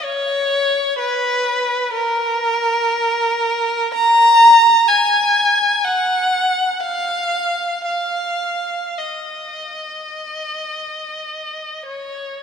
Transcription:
0.04 C#5
0.99 B4
1.93 A#4
3.94 A#5
4.88 G#5
5.84 F#5
6.80 F5
7.84 F5
8.98 D#5
11.86 C#5

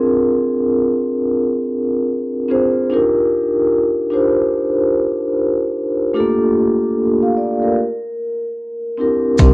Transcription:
Already playing: C4 D4 F4 G#4 A#4
2.48 C4 D4 F4 G#4 C5
2.90 D4 D#4 F4 G4 A#4
4.10 D4 D#4 F4 G4 C5
6.14 A3 D4 F4 G4 A4
6.20 A#3
7.23 F5
7.37 D5
7.63 A#4
8.97 C4 D4 E4 G4 A#4
9.37 C2 C4 D4 D#4 G4, kick, closed hi-hat, maracas
9.42 A#4

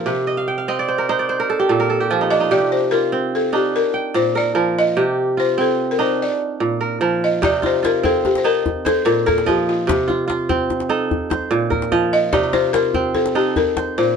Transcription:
Already playing: A#2 F3 D4 D#4 A#4
0.06 C3 G4
0.27 D#5
0.37 F5
0.48 G5
0.58 F5
0.68 C4 D#5
0.79 D5
0.88 C5
0.98 A#4
1.09 D#4 C5
1.19 D5
1.29 C5
1.40 A#4
1.50 A4
1.60 G4
1.69 A#2 A4
1.80 A#4
1.90 A4
2.00 G4
2.10 F3 F4
2.21 D#4
2.31 D4 D#5
2.40 D#4
2.51 C3 G4 D5
2.72 C5
2.91 F4 A#4
3.12 C4
3.35 A4
3.53 D4 D#4 G4
3.76 A#4
3.94 G5
4.14 A#2 C5
4.35 A#4 D5
4.55 F3 A#4
4.79 D#5
4.97 C3 G4
5.37 F4 C5
5.58 C4 A4
5.91 A#4
5.99 D4 D#4 C5
6.22 D5
6.60 A#2
6.81 A#4
7.01 F3 A#4
7.24 D#5
7.42 C3 D#4 D5, djembe slap, djembe bass
7.54 djembe slap
7.62 F4 C5, djembe slap, djembe tone
7.83 F4 A#4, djembe slap
8.03 C4 A4, djembe bass
8.25 G4, djembe tone
8.35 C5, djembe slap
8.44 D#4 A#4 A5, djembe slap
8.66 djembe bass
8.85 A4 C5, djembe slap, djembe tone
8.97 djembe slap
9.05 A#2 A#4
9.26 A4 A#4, djembe slap, djembe bass
9.38 djembe slap
9.46 F3 G4 D#5, djembe tone
9.59 djembe slap
9.69 F4
9.87 C3 G4, djembe slap, djembe bass
10.00 djembe slap
10.08 F4, djembe slap, djembe tone
10.28 F4, djembe slap
10.49 C4, djembe bass
10.70 djembe tone
10.80 djembe slap
10.89 D#4 A4, djembe slap
11.11 djembe bass
11.30 C5, djembe slap, djembe tone
11.42 djembe slap
11.51 A#2
11.70 A#4, djembe slap, djembe bass
11.82 djembe slap
11.92 F3 D#5, djembe tone
12.03 djembe slap
12.13 D#5
12.33 C3 D#4 D5, djembe slap, djembe bass
12.44 djembe slap
12.53 F4 C5, djembe slap, djembe tone
12.73 F4 A#4, djembe slap
12.94 C4, djembe bass
13.15 A4, djembe tone
13.26 djembe slap
13.35 D#4 G4 A4
13.56 A#4, djembe bass
13.77 C5, djembe slap, djembe tone
13.88 djembe slap
13.98 A#2 C5

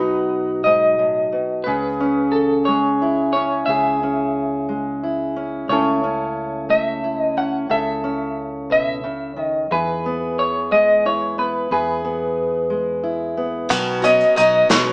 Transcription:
Already playing: B1 B2 F#3 F#4 B4
0.00 D#4
0.64 G#2 D#5
0.99 A2
1.32 B2
1.64 C#2 C#3 G#4 B4
2.00 C#4
2.32 A4
2.65 G#3 C#5
3.02 E4
3.33 C#4 C#5
3.66 C#2 C#3 G#4 E5
4.03 C#4
4.69 G#3
5.03 E4
5.36 C#4
5.69 C#2 C#3 A3 C#4 E4 A4 C#5
6.04 C#4
6.69 A3 E5
7.04 E4
7.18 D#5
7.37 C#4 F#5
7.69 C#2 C#3 A4 E5
8.04 C#4
8.70 B2 E5
9.04 C#3
9.36 D#3
9.41 D#5
9.71 E2 E3 G#4 B4
10.06 B3
10.39 C#5
10.71 G#3 D#5
11.05 E4 C#5
11.38 B3 B4
11.71 E2 E3 G#4 B4
12.05 B3
12.70 G#3
13.03 E4
13.37 B3
13.69 B1 B2 D#3 F#3 B3 C#4 F#4, kick, closed hi-hat, shaker
14.02 F#3 B3 C#4 F#4 D#5, closed hi-hat
14.20 shaker
14.36 B1 F#3 B3 C#4 D#4 F#4 D#5, closed hi-hat
14.69 B1 B2 D#3 F#3 B3 C#4 F#4 B4 C#5, snare, closed hi-hat, shaker

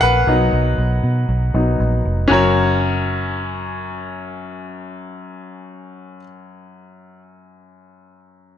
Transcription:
Already playing: F#3 A#3 C#4 F#4 G#4 A#4 C#5 F5
0.00 A#1 B4 F#5
0.27 B1 F#3 B3 D#4
0.53 B1
0.78 B1
1.03 B2
1.29 B1
1.54 B1 F#3 B3 D#4
1.80 A#1
2.05 F1
2.28 F#1 F#2 C#4 F#4 A#4
2.33 C#5

